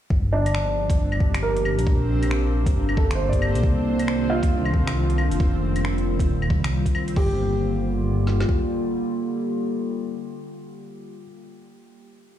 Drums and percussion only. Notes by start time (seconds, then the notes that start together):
0.10 kick
0.46 closed hi-hat, claves
0.55 finger snap
0.90 kick, closed hi-hat
1.12 claves
1.20 kick
1.34 finger snap, closed hi-hat, claves
1.57 closed hi-hat
1.65 claves
1.79 closed hi-hat
1.87 kick
2.23 closed hi-hat, claves
2.31 finger snap
2.66 kick, closed hi-hat
2.89 claves
2.97 kick
3.11 finger snap, closed hi-hat
3.33 kick, closed hi-hat
3.42 claves
3.55 closed hi-hat
3.63 kick
3.99 closed hi-hat, claves
4.08 finger snap
4.43 kick, closed hi-hat
4.65 claves
4.74 kick
4.87 finger snap, closed hi-hat, claves
5.10 closed hi-hat
5.18 claves
5.31 closed hi-hat
5.40 kick
5.76 closed hi-hat, claves
5.85 finger snap
5.98 closed hi-hat
6.19 kick, closed hi-hat
6.42 claves
6.50 kick
6.64 finger snap, closed hi-hat, claves
6.86 kick, closed hi-hat
6.95 claves
7.08 closed hi-hat
7.16 kick, crash
8.27 snare
8.40 snare
8.49 kick